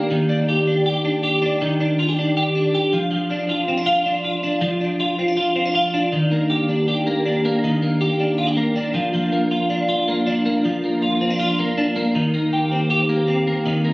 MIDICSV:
0, 0, Header, 1, 2, 480
1, 0, Start_track
1, 0, Key_signature, -3, "major"
1, 0, Tempo, 376176
1, 139, Time_signature, 4, 2, 24, 8
1, 17780, End_track
2, 0, Start_track
2, 0, Title_t, "Clean electric guitar"
2, 0, Program_c, 0, 27
2, 0, Note_on_c, 0, 51, 78
2, 0, Note_on_c, 0, 58, 65
2, 0, Note_on_c, 0, 62, 64
2, 0, Note_on_c, 0, 67, 74
2, 131, Note_off_c, 0, 51, 0
2, 136, Note_on_c, 0, 51, 70
2, 366, Note_off_c, 0, 62, 0
2, 372, Note_on_c, 0, 62, 61
2, 617, Note_off_c, 0, 67, 0
2, 622, Note_on_c, 0, 67, 73
2, 854, Note_off_c, 0, 62, 0
2, 859, Note_on_c, 0, 62, 58
2, 1081, Note_off_c, 0, 67, 0
2, 1096, Note_on_c, 0, 67, 76
2, 1334, Note_off_c, 0, 62, 0
2, 1339, Note_on_c, 0, 62, 56
2, 1557, Note_off_c, 0, 67, 0
2, 1573, Note_on_c, 0, 67, 71
2, 1808, Note_off_c, 0, 62, 0
2, 1813, Note_on_c, 0, 62, 66
2, 2046, Note_off_c, 0, 51, 0
2, 2062, Note_on_c, 0, 51, 75
2, 2297, Note_off_c, 0, 62, 0
2, 2302, Note_on_c, 0, 62, 59
2, 2534, Note_off_c, 0, 67, 0
2, 2541, Note_on_c, 0, 65, 66
2, 2664, Note_off_c, 0, 65, 0
2, 2664, Note_on_c, 0, 67, 54
2, 2783, Note_off_c, 0, 62, 0
2, 2788, Note_on_c, 0, 62, 59
2, 3008, Note_off_c, 0, 67, 0
2, 3023, Note_on_c, 0, 67, 76
2, 3253, Note_off_c, 0, 62, 0
2, 3258, Note_on_c, 0, 62, 62
2, 3488, Note_off_c, 0, 67, 0
2, 3503, Note_on_c, 0, 67, 77
2, 3733, Note_off_c, 0, 51, 0
2, 3738, Note_on_c, 0, 53, 93
2, 3787, Note_off_c, 0, 67, 0
2, 3950, Note_off_c, 0, 53, 0
2, 3965, Note_on_c, 0, 53, 72
2, 4210, Note_off_c, 0, 62, 0
2, 4216, Note_on_c, 0, 62, 59
2, 4357, Note_off_c, 0, 58, 0
2, 4455, Note_on_c, 0, 65, 67
2, 4693, Note_off_c, 0, 62, 0
2, 4698, Note_on_c, 0, 60, 59
2, 4816, Note_off_c, 0, 60, 0
2, 4816, Note_on_c, 0, 62, 48
2, 4913, Note_off_c, 0, 65, 0
2, 4928, Note_on_c, 0, 65, 82
2, 5162, Note_off_c, 0, 62, 0
2, 5177, Note_on_c, 0, 62, 67
2, 5400, Note_off_c, 0, 65, 0
2, 5416, Note_on_c, 0, 65, 64
2, 5650, Note_off_c, 0, 62, 0
2, 5655, Note_on_c, 0, 62, 65
2, 5871, Note_off_c, 0, 53, 0
2, 5886, Note_on_c, 0, 53, 83
2, 6132, Note_off_c, 0, 62, 0
2, 6137, Note_on_c, 0, 62, 55
2, 6363, Note_off_c, 0, 65, 0
2, 6379, Note_on_c, 0, 65, 71
2, 6614, Note_off_c, 0, 62, 0
2, 6619, Note_on_c, 0, 60, 63
2, 6738, Note_off_c, 0, 60, 0
2, 6738, Note_on_c, 0, 62, 46
2, 6836, Note_off_c, 0, 65, 0
2, 6852, Note_on_c, 0, 65, 76
2, 7084, Note_off_c, 0, 62, 0
2, 7089, Note_on_c, 0, 60, 59
2, 7216, Note_off_c, 0, 60, 0
2, 7216, Note_on_c, 0, 62, 50
2, 7320, Note_off_c, 0, 65, 0
2, 7336, Note_on_c, 0, 65, 68
2, 7562, Note_off_c, 0, 62, 0
2, 7577, Note_on_c, 0, 62, 68
2, 7809, Note_off_c, 0, 53, 0
2, 7814, Note_on_c, 0, 51, 76
2, 7865, Note_off_c, 0, 65, 0
2, 8057, Note_on_c, 0, 58, 65
2, 8292, Note_on_c, 0, 67, 73
2, 8530, Note_off_c, 0, 62, 0
2, 8535, Note_on_c, 0, 62, 64
2, 8762, Note_off_c, 0, 67, 0
2, 8777, Note_on_c, 0, 67, 72
2, 9013, Note_off_c, 0, 58, 0
2, 9018, Note_on_c, 0, 58, 63
2, 9254, Note_off_c, 0, 62, 0
2, 9259, Note_on_c, 0, 62, 65
2, 9502, Note_off_c, 0, 58, 0
2, 9507, Note_on_c, 0, 58, 75
2, 9731, Note_off_c, 0, 51, 0
2, 9747, Note_on_c, 0, 51, 81
2, 9978, Note_off_c, 0, 58, 0
2, 9983, Note_on_c, 0, 58, 65
2, 10203, Note_off_c, 0, 67, 0
2, 10218, Note_on_c, 0, 67, 78
2, 10454, Note_off_c, 0, 62, 0
2, 10459, Note_on_c, 0, 62, 62
2, 10690, Note_off_c, 0, 67, 0
2, 10695, Note_on_c, 0, 65, 82
2, 10808, Note_off_c, 0, 65, 0
2, 10808, Note_on_c, 0, 67, 67
2, 10927, Note_off_c, 0, 58, 0
2, 10932, Note_on_c, 0, 58, 69
2, 11170, Note_off_c, 0, 62, 0
2, 11175, Note_on_c, 0, 62, 73
2, 11404, Note_off_c, 0, 51, 0
2, 11409, Note_on_c, 0, 53, 94
2, 11462, Note_off_c, 0, 67, 0
2, 11645, Note_off_c, 0, 53, 0
2, 11660, Note_on_c, 0, 53, 81
2, 11890, Note_off_c, 0, 58, 0
2, 11895, Note_on_c, 0, 58, 59
2, 12137, Note_on_c, 0, 65, 76
2, 12371, Note_off_c, 0, 62, 0
2, 12376, Note_on_c, 0, 62, 69
2, 12599, Note_off_c, 0, 65, 0
2, 12615, Note_on_c, 0, 65, 78
2, 12859, Note_off_c, 0, 58, 0
2, 12864, Note_on_c, 0, 58, 64
2, 13085, Note_off_c, 0, 62, 0
2, 13100, Note_on_c, 0, 62, 74
2, 13336, Note_off_c, 0, 58, 0
2, 13341, Note_on_c, 0, 58, 67
2, 13573, Note_off_c, 0, 53, 0
2, 13588, Note_on_c, 0, 53, 76
2, 13823, Note_off_c, 0, 58, 0
2, 13829, Note_on_c, 0, 58, 61
2, 14052, Note_off_c, 0, 65, 0
2, 14067, Note_on_c, 0, 65, 75
2, 14301, Note_off_c, 0, 62, 0
2, 14306, Note_on_c, 0, 60, 67
2, 14423, Note_off_c, 0, 60, 0
2, 14423, Note_on_c, 0, 62, 48
2, 14526, Note_off_c, 0, 65, 0
2, 14541, Note_on_c, 0, 65, 80
2, 14785, Note_off_c, 0, 58, 0
2, 14790, Note_on_c, 0, 58, 58
2, 15011, Note_off_c, 0, 62, 0
2, 15027, Note_on_c, 0, 62, 68
2, 15255, Note_off_c, 0, 58, 0
2, 15260, Note_on_c, 0, 58, 72
2, 15501, Note_off_c, 0, 53, 0
2, 15506, Note_on_c, 0, 51, 80
2, 15550, Note_off_c, 0, 65, 0
2, 15553, Note_off_c, 0, 62, 0
2, 15740, Note_off_c, 0, 58, 0
2, 15745, Note_on_c, 0, 58, 63
2, 15986, Note_on_c, 0, 67, 67
2, 16226, Note_on_c, 0, 60, 57
2, 16448, Note_off_c, 0, 67, 0
2, 16463, Note_on_c, 0, 67, 77
2, 16689, Note_off_c, 0, 58, 0
2, 16705, Note_on_c, 0, 58, 59
2, 16940, Note_off_c, 0, 60, 0
2, 16945, Note_on_c, 0, 60, 69
2, 17177, Note_off_c, 0, 58, 0
2, 17192, Note_on_c, 0, 58, 69
2, 17420, Note_off_c, 0, 51, 0
2, 17425, Note_on_c, 0, 51, 80
2, 17650, Note_off_c, 0, 58, 0
2, 17665, Note_on_c, 0, 58, 61
2, 17780, Note_off_c, 0, 51, 0
2, 17780, Note_off_c, 0, 58, 0
2, 17780, Note_off_c, 0, 60, 0
2, 17780, Note_off_c, 0, 67, 0
2, 17780, End_track
0, 0, End_of_file